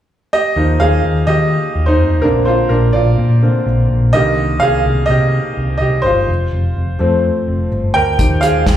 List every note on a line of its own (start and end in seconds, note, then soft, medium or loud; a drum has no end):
0.33 0.77 G4 medium
0.33 0.82 D#5 loud
0.56 0.76 D#2 medium
0.56 2.19 F3 soft
0.56 2.19 A#3 soft
0.56 1.86 D#4 soft
0.80 1.00 D#2 medium
0.80 1.25 G#4 medium
0.80 1.29 F5 medium
1.04 1.24 D#2 medium
1.27 1.57 D#3 medium
1.27 1.84 G4 medium
1.27 1.83 D#5 medium
1.75 1.99 D#2 medium
1.86 2.21 D#4 medium
1.86 2.20 C5 medium
1.99 2.22 F2 medium
2.22 2.62 A#1 medium
2.22 2.54 D3 soft
2.22 2.55 A#3 soft
2.22 2.55 C4 medium
2.22 2.46 D4 medium
2.22 2.47 A#4 medium
2.45 2.69 F4 medium
2.45 2.68 C5 medium
2.69 2.90 A#1 medium
2.69 2.93 D4 soft
2.69 2.95 A#4 medium
2.93 3.14 A#1 medium
2.93 3.39 F4 medium
2.93 3.38 D5 medium
3.18 3.48 A#2 medium
3.42 3.64 D3 soft
3.42 3.64 A#3 soft
3.42 3.64 C4 soft
3.66 3.86 A#1 medium
3.90 4.14 A#1 medium
4.13 4.53 C2 medium
4.13 4.82 D3 medium
4.13 4.82 D#3 medium
4.13 4.82 A#3 soft
4.13 4.59 G4 medium
4.13 4.62 D#5 loud
4.60 4.81 C2 medium
4.60 5.06 G#4 medium
4.60 5.05 F5 loud
4.86 5.05 C2 medium
5.06 5.39 C3 medium
5.06 5.76 D#5 medium
5.10 5.77 G4 medium
5.57 5.77 C2 medium
5.78 6.00 C2 medium
5.78 6.03 G4 medium
5.78 6.01 D#5 medium
6.02 6.24 G1 medium
6.02 6.94 C5 medium
6.06 6.96 F4 medium
6.28 6.48 F1 medium
6.53 6.72 F1 medium
6.77 6.96 F1 medium
6.99 7.29 F2 medium
6.99 7.67 F3 soft
6.99 7.68 A3 soft
6.99 7.68 C4 medium
7.48 7.67 F1 medium
7.72 7.91 G1 medium
7.94 8.15 D2 medium
7.94 8.40 A#4 medium
7.94 8.44 G5 loud
8.18 8.38 D#2 medium
8.18 8.77 F3 soft
8.18 8.77 D#4 soft
8.18 8.77 G4 soft
8.18 kick medium
8.18 closed hi-hat medium
8.41 8.62 D#2 medium
8.41 8.77 G#4 medium
8.41 8.77 F5 medium
8.41 closed hi-hat medium
8.66 8.77 D#2 medium
8.66 kick medium
8.66 snare medium
8.66 closed hi-hat medium